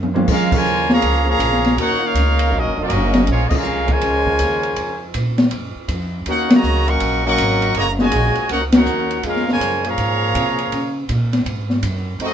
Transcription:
Already playing: F#2
0.03 mid tom
0.14 G#3 A#3 C4 C#4 F4, mid tom
0.28 F2 G#3 C#4 F4 G#4 A#4 F5, kick, crash
0.52 C#3 F3 G#3 F4 A#4 C#5 G#5, kick, crash
0.65 D#2, hi-hat pedal
0.89 C#3 F3 A#3 G#4 C#5 F5 A#5, snare
1.02 C#2, ride
1.25 C#3 F3 A#3 G#4 C#5
1.29 F5 A#5
1.39 A#1, hi-hat pedal, ride
1.53 snare
1.65 snare, ride
1.76 D#2 A#3 C#4 D#4 F#4 A#4 C#5 F#5, ride
2.00 A#3 C#4 F4
2.04 D#4 A#4 C#5 F5
2.14 C#2, hi-hat pedal, ride
2.39 ride
2.51 A#1 F#3 A#3 D#4
2.57 C#4 F#4 A#4 D#5
2.65 F#1
2.75 D#1 F#3 A#3 D#4
2.81 C#4 F#4 A#4 D#5
2.90 F#1, hi-hat pedal, ride
3.14 snare, ride
3.27 A#1 F3 G#3 C#4 G#4 C#5, ride
3.31 A#3 F4
3.48 G#3 C#4 F4 D#5, muted upright bass stroke, kick, crash
3.56 C#4 G#4 A#4 F5
3.64 C2, hi-hat pedal
3.87 C#3 F3 G#3, kick, ride
3.91 F4 A#4 C#5 G#5
4.01 C#2, ride
4.26 kick
4.39 D#2, hi-hat pedal, ride
4.63 ride
4.76 F2, ride
5.14 A#2, hi-hat pedal, ride
5.38 snare, ride
5.51 F#2, ride
5.75 muted upright bass stroke
5.88 F2, hi-hat pedal, ride
6.26 D#2 A#3 C#4 D#4 F#4 A#4 C#5 F#5, ride
6.50 C#3 F#3 A#3 F#4 C#5 D#5 A#5, snare, ride
6.63 C#2, hi-hat pedal
6.87 F#3 A#3 C#4 A#4 D#5 F#5 C#6, ride
7.00 A#1, ride
7.25 F#3 A#3 C#4 A#4 D#5 F#5 C#6
7.38 G#1, hi-hat pedal, ride
7.62 ride
7.75 F#1 C#3 F#3 A#3 F#4 C#5 D#5 A#5, ride
7.99 A#2 C#3 G#3 F#4 C#5 D#5 G#5, snare
8.12 A#1, hi-hat pedal, ride
8.35 muted upright bass stroke, ride
8.49 C#2 A#3 C#4 D#4 F#4 A#4 C#5 F#5, ride
8.72 A#3 C#4 D#4 F#4 A#4 C#5 F#5, snare, ride
8.85 D#2, hi-hat pedal
9.11 ride
9.23 F2 G#3 C#4 F4 G#4 A#4 F5, ride
9.36 snare
9.48 C#3 F3 G#3 F4 A#4 C#5 G#5, snare
9.60 F#2, hi-hat pedal, ride
9.84 A#2 F3 A#3 G#4 C#5 F5 A#5, ride
9.98 G#2, ride
10.35 C3, hi-hat pedal, ride
10.59 ride
10.72 C#3, ride
11.09 A#2, hi-hat pedal, ride
11.33 snare, ride
11.45 G#2, ride
11.70 snare
11.82 F#2, hi-hat pedal, ride
12.19 F2 A3 C4 D#4, ride
12.23 C4 F#4 A4 D#5

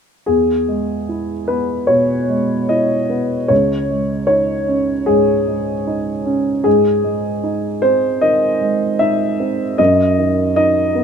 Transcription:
0.26 E2 G#4
0.68 G#3
1.09 E4
1.48 B3 B4
1.87 B2 C#5
2.29 G#3
2.69 E4 D#5
3.09 B3
3.48 C#2 C#5
3.91 G#3
4.27 D#4 C#5
4.68 C#4
5.06 G#2 G#4
5.47 G#3
5.87 D#4
6.26 C#4
6.64 G#2 G#4
7.04 G#3
7.43 D#4
7.82 C4 C5
8.21 D#3 D#5
8.61 G#3
8.99 D#4 E5
9.40 C4
9.78 F#2 D#5
10.19 D#3
10.56 D#4 D#5
10.95 B3

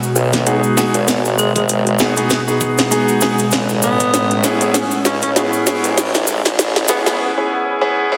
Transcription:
Already playing: B2 G#3 F#4
0.03 cabasa
0.16 B1, cabasa
0.33 kick, snare, closed hi-hat, cabasa
0.46 B3 D#4 F#4 G#4, closed hi-hat, cabasa
0.63 cabasa
0.77 B3 D#4 F#4 G#4, snare, cabasa
0.94 G#1, closed hi-hat, cabasa
1.08 snare, closed hi-hat, cabasa
1.25 cabasa
1.38 G#3, cabasa
1.55 G#1 G#3, kick, closed hi-hat, cabasa
1.69 closed hi-hat, cabasa
1.87 closed hi-hat
1.99 B3 D#4 F#4 G#4, kick, snare, cabasa
2.16 B3 D#4 F#4 G#4, closed hi-hat, cabasa
2.30 kick, snare, closed hi-hat, cabasa
2.48 B3 D#4 F#4 G#4, cabasa
2.61 kick, cabasa
2.78 snare, closed hi-hat, cabasa
2.91 B3 D#4 F#4 G#4, closed hi-hat, cabasa
3.08 cabasa
3.21 B3 D#4 F#4 G#4, snare, cabasa
3.38 closed hi-hat, cabasa
3.51 A1 A2 C#4, kick, snare, closed hi-hat, cabasa
3.69 cabasa
3.82 B3, cabasa
4.00 kick, closed hi-hat, cabasa
4.14 A1, snare, closed hi-hat, cabasa
4.31 closed hi-hat
4.44 B3 C#4 E4 G#4, kick, snare, cabasa
4.61 B3 C#4 E4 G#4, closed hi-hat, cabasa
4.74 snare, closed hi-hat, cabasa
4.91 cabasa
5.05 C#2 C#4, snare, cabasa
5.22 C#4, kick, closed hi-hat, cabasa
5.36 B3 C#4 E4 G#4, snare, closed hi-hat, cabasa
5.53 cabasa
5.67 B3 C#4 E4 G#4, snare, cabasa
5.84 A1, closed hi-hat, cabasa
5.98 snare, closed hi-hat, cabasa
6.15 snare, closed hi-hat, cabasa
6.27 cabasa
6.45 A1, kick, snare, closed hi-hat, cabasa
6.59 snare, closed hi-hat, cabasa
6.76 snare, closed hi-hat
6.88 B3 C#4 E4 G#4, kick, snare, cabasa
7.06 A1 B3 C#4 E4 G#4, snare, cabasa
7.38 B3 C#4 E4 G#4
7.81 B3 C#4 E4 G#4
8.12 B3 C#4 E4 G#4

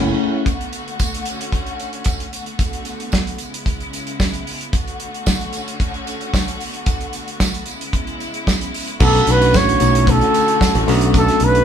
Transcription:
Already playing: F#1 E3 A3 C#4 E4 F#4 G#4
0.46 D3 A3 B3 F#4, kick, closed hi-hat, tambourine
0.61 closed hi-hat
0.73 closed hi-hat, tambourine
0.88 closed hi-hat
0.99 kick, closed hi-hat, tambourine
1.14 closed hi-hat
1.25 C#4, closed hi-hat, tambourine
1.41 closed hi-hat
1.52 kick, closed hi-hat, tambourine
1.66 closed hi-hat
1.80 closed hi-hat, tambourine
1.93 closed hi-hat
2.04 kick, closed hi-hat, tambourine
2.20 closed hi-hat
2.33 D3 A3 B3 F#4, closed hi-hat, tambourine
2.46 closed hi-hat
2.59 kick, closed hi-hat, tambourine
2.73 closed hi-hat
2.85 closed hi-hat, tambourine
3.00 closed hi-hat
3.12 kick, snare, tambourine
3.27 closed hi-hat
3.38 C#3 G#3 E4, closed hi-hat, tambourine
3.54 closed hi-hat
3.66 kick, closed hi-hat, tambourine
3.80 closed hi-hat
3.93 closed hi-hat, tambourine
4.07 closed hi-hat
4.20 kick, snare, tambourine
4.34 closed hi-hat
4.47 open hi-hat, tambourine
4.61 closed hi-hat
4.72 D3 A3 F#4, kick, closed hi-hat, tambourine
4.88 closed hi-hat
5.00 closed hi-hat
5.14 closed hi-hat
5.26 kick, snare, tambourine
5.41 closed hi-hat
5.53 C#4, closed hi-hat, tambourine
5.68 closed hi-hat
5.80 kick, closed hi-hat, tambourine
5.94 closed hi-hat
6.07 closed hi-hat, tambourine
6.21 closed hi-hat
6.34 kick, snare, tambourine
6.48 closed hi-hat
6.59 B3, open hi-hat, tambourine
6.74 closed hi-hat
6.86 kick, closed hi-hat, tambourine
7.01 closed hi-hat
7.13 closed hi-hat, tambourine
7.28 closed hi-hat
7.40 kick, snare, tambourine
7.54 closed hi-hat
7.66 C#3 G#3 E4, closed hi-hat, tambourine
7.81 closed hi-hat
7.93 kick, closed hi-hat
8.07 closed hi-hat
8.20 closed hi-hat, tambourine
8.34 closed hi-hat
8.47 kick, snare, tambourine
8.61 closed hi-hat
8.74 open hi-hat, tambourine
8.87 closed hi-hat
8.99 B1 D3 A3 B3 C#4 D4 F#4 A4, kick, crash, tambourine
9.15 snare, closed hi-hat
9.27 B1, closed hi-hat
9.31 B4
9.40 A3 C#4 D4 F#4, closed hi-hat
9.54 A1 C#5, kick, snare, tambourine
9.69 closed hi-hat
9.79 B1 A3 C#4 E4 F#4, closed hi-hat, tambourine
9.95 closed hi-hat
10.07 A4, kick, closed hi-hat, tambourine
10.21 closed hi-hat
10.34 closed hi-hat, tambourine
10.48 closed hi-hat
10.61 kick, snare, tambourine
10.75 A1, closed hi-hat
10.86 B1 A3 B3 C#4 D4 F#4, open hi-hat, tambourine
11.01 closed hi-hat
11.14 A4, kick, closed hi-hat, tambourine
11.28 snare, closed hi-hat
11.40 B1, closed hi-hat
11.45 B4
11.53 A3 C#4 D4 F#4, closed hi-hat

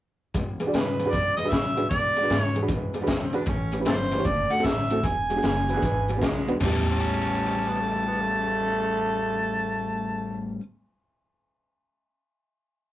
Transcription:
0.34 E2 B2, kick, closed hi-hat
0.60 E2 B2 G#4 B4, closed hi-hat
0.67 D4 F#4 G#4 D5
0.74 E2 G#2 C#3 B4, snare, closed hi-hat
0.99 E2 B2 G#4 B4, closed hi-hat
1.05 D4 F#4 G#4 B4
1.12 E2 F#2 B2 D5, kick, closed hi-hat
1.37 E2 B2 G#4 B4 D#5, closed hi-hat
1.45 D4 F#4 G#4 B4
1.49 E2 A2 C#3 E5, kick, closed hi-hat
1.53 snare
1.77 E2 B2 D4 F#4 G#4 B4, closed hi-hat
1.89 E2 B2 D5, kick, closed hi-hat
2.16 E2 B2 G#4 D5, closed hi-hat
2.22 D4 F#4 G#4 B4
2.30 E2 G#2 C#3, snare, closed hi-hat
2.41 C#5
2.55 E2 B2 E3 G#4 B4, closed hi-hat
2.62 D4 F#4 G#4 B4
2.68 E2 F#2 B2, kick, closed hi-hat
2.94 E2 B2 G3 G#4 B4, closed hi-hat
3.02 D4 F#4 G#4 B4
3.07 E2 C#3 C4, kick, snare, closed hi-hat
3.33 E2 B2 D4 F#4 G#4 B4, muted upright bass stroke, closed hi-hat
3.46 A1 A2 E3 C#4, kick, closed hi-hat
3.72 A2 E3 G4 B4, closed hi-hat
3.80 C#4 E4 G4 B4
3.85 G1 A2 F#3 E4 A4 C5, snare, closed hi-hat
4.11 A2 E3 G4 B4, snare, closed hi-hat
4.18 C#4 E4 G4 C#5
4.25 F#1 D3 A3 D5, kick, closed hi-hat
4.50 D3 A3 F#4 A4 F#5, muted upright bass stroke, closed hi-hat
4.59 C4 E4 F#4 A4
4.64 A1 D3 B3 E5, kick, snare, closed hi-hat
4.90 D3 A3 C4 E4 F#4 A4, closed hi-hat
5.04 E1 E2 B2 G#5, kick, closed hi-hat
5.30 E2 B2 F#4 G#4, closed hi-hat
5.36 B3 D4 F#4 G#4
5.43 F#1 E2 C#3, snare, closed hi-hat
5.69 E2 B2 E3 F#4 B4, closed hi-hat
5.76 B3 D4 F#4 G#4
5.82 G#1 E2 B2, kick, closed hi-hat
6.08 E2 B2 G3 F#4 B4, closed hi-hat
6.17 B3 D4 F#4 B4
6.21 E2 C#3 G#3, kick, snare, closed hi-hat
6.47 E2 B2 B3 D4 F#4 B4, closed hi-hat
6.60 A1 A2 G3 B3 C#4 E4 A5, kick, floor tom, ride bell
6.65 C#4 G4
6.90 C#4
7.68 B3
7.81 A3
8.08 B3
8.21 A3

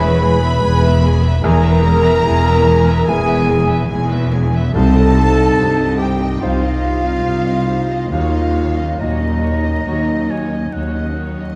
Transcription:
Already playing: E1 E2 B2 E3 G#3 B3 E4 G#4 B4 B5
0.01 B3 B4 E5
0.21 G#3 G#4 G#5
0.36 G#3
0.42 B3 B4 E5
0.62 E1 E2 G#3 E4 G#4 G#5
0.82 B3 B4 E5
0.89 G#3
1.02 G#3 G#4 G#5
1.23 B3 B4 E5
1.42 E1 E2 E3 G#3 G#4 A#4 G#5 A#5
1.63 B3 B4 E5
1.70 E4
1.83 G#3 G#4 G#5
1.98 G#3
2.04 B3 B4 E5
2.24 E1 E2 G#3 E4 G#4 G#5
2.43 B3 B4 E5
2.53 G#3
2.64 G#3 G#4 G#5
2.84 B3 B4 E5
3.06 E1 E2 G#3 E4 G#4 B4 G#5
3.26 B3 B4 E5
3.36 B4
3.47 G#3 G#4 G#5
3.63 G#3
3.68 B3 B4 E5
3.88 E1 E2 G#3 E4 G#4 G#5
4.10 B3 B4 E5
4.19 G#3
4.31 G#3 G#4 G#5
4.47 B4
4.53 B3 B4 E5
4.73 C2 C3 D#4 G4 A4 C5 A5
4.96 C4 D#4 D#5
5.15 D#4 G4 C5
5.30 C4
5.36 C4 D#4 D#5
5.57 C2 G2 G3 D#4 G4 C5
5.79 C4 D#4 D#5
5.85 C4
5.98 D#4 G4 C5 G5
6.20 C4 D#4 D#5
6.40 C2 C4 D#4 F4 G4 C5 F5
6.62 C4 D#4 D#5
6.83 D#4 G4 C5
7.04 C4 D#4 D#5
7.25 C2 G3 D#4 G4 C5
7.47 C4 D#4 D#5
7.67 D#4 G4 C5
7.90 C4 D#4 D#5
8.11 D#2 D#3 D#4 F4 F#4 C#5 F5
8.33 C#4 D#4 D#5
8.41 C#5
8.55 D#4 F#4 C#5
8.71 F#3
8.75 C#4 D#4 D#5
8.98 D#2 A#2 D#4 F#4 C#5 D#5 A#5
9.20 C#4 D#4 D#5
9.29 F#3
9.41 D#4 F#4 C#5
9.63 C#4 D#4 D#5
9.84 D#2 F#3 D#4 F#4 C#5
9.88 F#4 C#5
10.05 C#4 D#4 D#5
10.27 D#4 F#4 C#5 G#5
10.49 C#4 D#4 D#5
10.71 D#2 A#3 D#4 F#4 C#5 F#5
10.93 C#4 D#4 D#5
11.02 F#3
11.16 D#4 F#4 C#5
11.31 C#5
11.37 C#4 D#4 D#5

